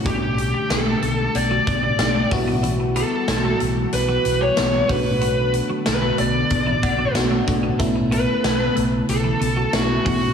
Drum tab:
HH |xxxxxxxo|xxxxxxxo|xxxxxxxx|xxxxxxxo|
TB |--x---x-|--x---x-|--x---x-|--x---x-|
SD |--o---o-|--o---o-|--o---o-|--o---o-|
BD |o----o-o|-------o|----oo-o|o------o|